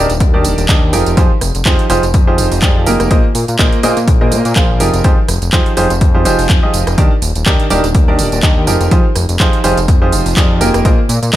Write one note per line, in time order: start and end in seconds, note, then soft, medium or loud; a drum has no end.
0.10 0.22 D#1 loud
0.10 closed hi-hat medium
0.10 tambourine soft
0.20 0.46 D#2 loud
0.20 kick loud
0.20 closed hi-hat medium
0.20 tambourine soft
0.34 0.66 D#3 medium
0.34 0.66 D4 medium
0.34 0.66 D#4 medium
0.34 0.66 G4 medium
0.34 0.66 A#4 medium
0.34 0.66 D5 medium
0.45 0.55 D#1 medium
0.45 open hi-hat loud
0.45 tambourine medium
0.58 0.66 D#1 loud
0.58 closed hi-hat medium
0.58 tambourine soft
0.69 0.95 D#2 loud
0.69 0.90 D4 medium
0.69 0.90 D#4 medium
0.69 0.90 G4 medium
0.69 0.90 A#4 medium
0.69 0.90 D#5 medium
0.69 kick loud
0.69 clap loud
0.69 closed hi-hat medium
0.69 tambourine soft
0.93 1.03 F1 medium
0.93 1.15 F3 medium
0.93 1.15 D#4 medium
0.93 1.15 F4 medium
0.93 1.15 G4 medium
0.93 1.15 G#4 medium
0.93 1.15 A#4 medium
0.93 open hi-hat loud
0.93 tambourine medium
1.06 1.15 F1 medium
1.06 closed hi-hat medium
1.06 tambourine soft
1.17 1.27 F2 loud
1.17 1.30 F3 medium
1.17 1.30 D#4 medium
1.17 1.30 F4 medium
1.17 1.30 G4 medium
1.17 1.30 G#4 medium
1.17 1.30 C5 loud
1.17 kick loud
1.17 closed hi-hat medium
1.17 tambourine soft
1.41 1.52 F1 medium
1.41 cross-stick medium
1.41 open hi-hat loud
1.41 tambourine medium
1.55 1.63 F1 medium
1.55 closed hi-hat medium
1.55 tambourine soft
1.65 1.76 F2 medium
1.65 1.84 F3 loud
1.65 1.84 D#4 medium
1.65 1.84 F4 medium
1.65 1.84 G4 medium
1.65 1.84 G#4 medium
1.65 1.84 C5 loud
1.65 kick loud
1.65 clap loud
1.65 closed hi-hat medium
1.65 tambourine soft
1.79 closed hi-hat soft
1.90 2.00 F1 loud
1.90 2.02 F3 loud
1.90 2.02 D#4 medium
1.90 2.02 F4 medium
1.90 2.02 G4 medium
1.90 2.02 G#4 medium
1.90 2.02 C5 loud
1.90 open hi-hat loud
1.90 tambourine medium
2.03 2.16 F1 loud
2.03 closed hi-hat medium
2.03 tambourine soft
2.14 2.40 F2 loud
2.14 kick loud
2.14 closed hi-hat medium
2.14 tambourine soft
2.27 2.60 F3 medium
2.27 2.60 D#4 medium
2.27 2.60 F4 medium
2.27 2.60 G4 medium
2.27 2.60 G#4 medium
2.27 2.60 C5 medium
2.38 2.48 F1 medium
2.38 open hi-hat loud
2.38 tambourine medium
2.52 2.60 F1 loud
2.52 open hi-hat medium
2.52 tambourine soft
2.62 2.88 F2 loud
2.62 2.84 F3 medium
2.62 2.84 D#4 medium
2.62 2.84 F4 medium
2.62 2.84 G4 medium
2.62 2.84 G#4 medium
2.62 2.84 D5 medium
2.62 kick loud
2.62 clap loud
2.62 closed hi-hat medium
2.62 tambourine soft
2.86 2.97 F1 medium
2.86 3.08 A#3 medium
2.86 3.08 D#4 medium
2.86 3.08 F4 medium
2.86 3.08 G4 medium
2.86 3.08 G#4 medium
2.86 3.08 A#4 medium
2.86 open hi-hat loud
2.86 tambourine medium
3.00 3.08 F1 medium
3.00 cross-stick medium
3.00 closed hi-hat medium
3.00 tambourine soft
3.11 3.21 A#1 loud
3.11 3.23 A#3 loud
3.11 3.23 F4 medium
3.11 3.23 G#4 medium
3.11 3.23 A#4 medium
3.11 3.23 C5 medium
3.11 3.23 D#5 loud
3.11 kick loud
3.11 closed hi-hat medium
3.11 tambourine soft
3.35 3.45 A#2 medium
3.35 open hi-hat loud
3.35 tambourine medium
3.48 3.57 A#2 medium
3.48 closed hi-hat medium
3.48 tambourine soft
3.59 3.69 A#1 medium
3.59 3.78 A#3 loud
3.59 3.78 F4 medium
3.59 3.78 G#4 medium
3.59 3.78 A#4 medium
3.59 3.78 C5 medium
3.59 3.78 D#5 loud
3.59 kick loud
3.59 clap loud
3.59 closed hi-hat medium
3.59 tambourine soft
3.73 closed hi-hat soft
3.83 3.94 A#2 loud
3.83 3.96 A#3 loud
3.83 3.96 F4 medium
3.83 3.96 G#4 medium
3.83 3.96 A#4 medium
3.83 3.96 C5 medium
3.83 3.96 D#5 loud
3.83 open hi-hat loud
3.83 tambourine medium
3.97 4.09 A#2 loud
3.97 closed hi-hat medium
3.97 tambourine soft
4.08 4.33 A#1 loud
4.08 kick loud
4.08 closed hi-hat medium
4.08 tambourine soft
4.21 4.53 A#3 medium
4.21 4.53 F4 medium
4.21 4.53 G#4 medium
4.21 4.53 A#4 medium
4.21 4.53 C5 medium
4.21 4.53 D#5 medium
4.32 4.42 A#2 medium
4.32 open hi-hat loud
4.32 tambourine medium
4.45 4.53 A#2 loud
4.45 closed hi-hat medium
4.45 tambourine soft
4.56 4.82 A#1 loud
4.56 4.78 F3 medium
4.56 4.78 F4 medium
4.56 4.78 G#4 medium
4.56 4.78 A#4 medium
4.56 4.78 C5 medium
4.56 4.78 F5 loud
4.56 kick loud
4.56 clap loud
4.56 closed hi-hat medium
4.56 tambourine soft
4.80 4.90 F1 medium
4.80 5.02 F3 medium
4.80 5.02 D#4 medium
4.80 5.02 F4 medium
4.80 5.02 G4 medium
4.80 5.02 G#4 medium
4.80 5.02 A#4 medium
4.80 open hi-hat loud
4.80 tambourine medium
4.94 5.02 F1 medium
4.94 closed hi-hat medium
4.94 tambourine soft
5.04 5.15 F2 loud
5.04 5.17 F3 loud
5.04 5.17 D#4 medium
5.04 5.17 F4 medium
5.04 5.17 G4 medium
5.04 5.17 G#4 medium
5.04 5.17 C5 loud
5.04 kick loud
5.04 closed hi-hat medium
5.04 tambourine soft
5.28 5.39 F1 medium
5.28 cross-stick medium
5.28 open hi-hat loud
5.28 tambourine medium
5.42 5.50 F1 medium
5.42 closed hi-hat medium
5.42 tambourine soft
5.53 5.63 F2 medium
5.53 5.71 F3 loud
5.53 5.71 D#4 medium
5.53 5.71 F4 medium
5.53 5.71 G4 medium
5.53 5.71 G#4 medium
5.53 5.71 C5 loud
5.53 kick loud
5.53 clap loud
5.53 closed hi-hat medium
5.53 tambourine soft
5.66 closed hi-hat soft
5.77 5.87 F1 loud
5.77 5.89 F3 loud
5.77 5.89 D#4 medium
5.77 5.89 F4 medium
5.77 5.89 G4 medium
5.77 5.89 G#4 medium
5.77 5.89 C5 loud
5.77 open hi-hat loud
5.77 tambourine medium
5.90 6.03 F1 loud
5.90 closed hi-hat medium
5.90 tambourine soft
6.01 6.27 F2 loud
6.01 kick loud
6.01 closed hi-hat medium
6.01 tambourine soft
6.15 6.23 F3 medium
6.15 6.23 D#4 medium
6.15 6.23 F4 medium
6.15 6.23 G4 medium
6.15 6.23 G#4 medium
6.15 6.23 C5 medium
6.25 6.36 F1 medium
6.25 6.60 F3 medium
6.25 6.60 D#4 medium
6.25 6.60 F4 medium
6.25 6.60 G4 medium
6.25 6.60 G#4 medium
6.25 6.60 C5 loud
6.25 open hi-hat loud
6.25 tambourine medium
6.39 6.47 F1 loud
6.39 open hi-hat medium
6.39 tambourine soft
6.49 6.60 F2 medium
6.49 kick loud
6.49 clap loud
6.49 closed hi-hat medium
6.63 6.95 F3 medium
6.63 6.95 D#4 medium
6.63 6.95 F4 medium
6.63 6.95 G4 medium
6.63 6.95 G#4 medium
6.63 6.95 D#5 medium
6.74 6.84 F1 medium
6.74 open hi-hat loud
6.74 tambourine medium
6.87 6.95 F1 loud
6.87 cross-stick medium
6.87 closed hi-hat medium
6.87 tambourine soft
6.98 7.08 D#2 loud
6.98 7.10 D#3 medium
6.98 7.10 D4 medium
6.98 7.10 D#4 medium
6.98 7.10 G4 medium
6.98 7.10 A#4 medium
6.98 7.10 D5 loud
6.98 kick loud
6.98 closed hi-hat medium
6.98 tambourine soft
7.22 7.32 D#1 medium
7.22 open hi-hat loud
7.22 tambourine medium
7.35 7.44 D#1 medium
7.35 closed hi-hat medium
7.35 tambourine soft
7.46 7.56 D#2 medium
7.46 7.65 D#3 loud
7.46 7.65 D4 medium
7.46 7.65 D#4 medium
7.46 7.65 G4 loud
7.46 7.65 A#4 medium
7.46 7.65 D5 loud
7.46 kick loud
7.46 clap loud
7.46 closed hi-hat medium
7.46 tambourine soft
7.60 closed hi-hat soft
7.70 7.81 D#1 loud
7.70 7.83 D#3 medium
7.70 7.83 D4 medium
7.70 7.83 D#4 medium
7.70 7.83 G4 medium
7.70 7.83 A#4 medium
7.70 7.83 D5 loud
7.70 open hi-hat loud
7.70 tambourine medium
7.84 7.96 D#1 loud
7.84 closed hi-hat soft
7.84 tambourine soft
7.95 8.20 D#2 loud
7.95 kick loud
7.95 closed hi-hat medium
7.95 tambourine soft
8.08 8.41 D#3 medium
8.08 8.41 D4 medium
8.08 8.41 D#4 medium
8.08 8.41 G4 medium
8.08 8.40 A#4 medium
8.08 8.41 D5 loud
8.19 8.29 D#1 medium
8.19 open hi-hat loud
8.19 tambourine medium
8.32 8.40 D#1 loud
8.32 closed hi-hat soft
8.32 tambourine soft
8.43 8.69 D#2 loud
8.43 8.65 D4 medium
8.43 8.65 D#4 medium
8.43 8.65 G4 medium
8.43 8.65 A#4 medium
8.43 8.65 D#5 loud
8.43 kick loud
8.43 clap loud
8.43 closed hi-hat medium
8.43 tambourine soft
8.67 8.77 F1 medium
8.67 8.89 F3 medium
8.67 8.89 D#4 medium
8.67 8.89 F4 medium
8.67 8.89 G4 medium
8.67 8.89 G#4 medium
8.67 8.89 A#4 medium
8.67 open hi-hat loud
8.67 tambourine medium
8.81 8.89 F1 medium
8.81 closed hi-hat medium
8.81 tambourine soft
8.91 9.02 F2 loud
8.91 9.04 F3 medium
8.91 9.04 D#4 medium
8.91 9.04 F4 medium
8.91 9.04 G4 medium
8.91 9.04 G#4 medium
8.91 9.04 C5 loud
8.91 kick loud
8.91 closed hi-hat medium
8.91 tambourine soft
9.16 9.26 F1 medium
9.16 cross-stick medium
9.16 open hi-hat loud
9.16 tambourine medium
9.29 9.37 F1 medium
9.29 closed hi-hat medium
9.29 tambourine soft
9.40 9.50 F2 medium
9.40 9.58 F3 loud
9.40 9.58 D#4 medium
9.40 9.58 F4 loud
9.40 9.58 G4 medium
9.40 9.58 G#4 medium
9.40 9.58 C5 loud
9.40 kick loud
9.40 clap loud
9.40 closed hi-hat medium
9.40 tambourine soft
9.53 closed hi-hat soft
9.64 9.74 F1 loud
9.64 9.76 F3 loud
9.64 9.76 D#4 medium
9.64 9.76 F4 medium
9.64 9.76 G4 medium
9.64 9.76 G#4 medium
9.64 9.76 C5 loud
9.64 open hi-hat loud
9.64 tambourine medium
9.77 9.90 F1 loud
9.77 closed hi-hat medium
9.77 tambourine soft
9.88 10.14 F2 loud
9.88 kick loud
9.88 closed hi-hat medium
9.88 tambourine soft
10.02 10.34 F3 medium
10.02 10.34 D#4 medium
10.02 10.34 F4 medium
10.02 10.34 G4 medium
10.02 10.34 G#4 medium
10.02 10.34 C5 medium
10.12 10.23 F1 medium
10.12 open hi-hat loud
10.12 tambourine medium
10.26 10.34 F1 loud
10.26 open hi-hat medium
10.26 tambourine soft
10.37 10.62 F2 loud
10.37 10.58 F3 medium
10.37 10.58 D#4 medium
10.37 10.58 F4 medium
10.37 10.58 G4 medium
10.37 10.58 G#4 medium
10.37 10.58 D5 loud
10.37 kick loud
10.37 clap loud
10.37 closed hi-hat medium
10.37 tambourine soft
10.61 10.71 F1 medium
10.61 10.82 A#3 medium
10.61 10.82 D#4 medium
10.61 10.82 F4 medium
10.61 10.82 G4 medium
10.61 10.82 G#4 medium
10.61 10.82 A#4 medium
10.61 open hi-hat loud
10.61 tambourine medium
10.74 10.82 F1 medium
10.74 cross-stick medium
10.74 closed hi-hat medium
10.74 tambourine soft
10.85 10.95 A#1 loud
10.85 10.97 A#3 loud
10.85 10.97 F4 medium
10.85 10.97 G#4 medium
10.85 10.97 A#4 medium
10.85 10.97 C5 medium
10.85 10.97 D#5 loud
10.85 kick loud
10.85 closed hi-hat medium
10.85 tambourine soft
11.09 11.19 A#2 medium
11.09 open hi-hat loud
11.09 tambourine medium
11.23 11.31 A#2 medium
11.23 closed hi-hat medium
11.23 tambourine soft